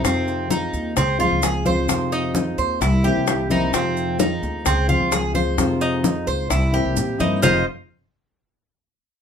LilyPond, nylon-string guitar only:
\new Staff \with { instrumentName = "Nylon-string guitar" } { \time 4/4 \key f \minor \tempo 4 = 130 <c ees aes c' f'>4 <ees aes c' f'>4 r8 <f aes c' f'>8 <f aes c' f'>8 <f aes c' f'>8 | <c ees aes c' f'>4 <ees aes c' f'>4 r8 <e bes c' e'>8 <e bes c' e'>8 <e bes c' e'>8 | <c ees aes c' f'>4 <ees aes c' f'>4 r8 <f aes c' f'>8 <f aes c' f'>8 <f aes c' f'>8 | <c ees aes c' f'>4 <ees aes c' f'>4 r8 <e bes c' e'>8 <e bes c' e'>8 <e bes c' e'>8 |
<f, c ees aes c' f'>8 r2. r8 | }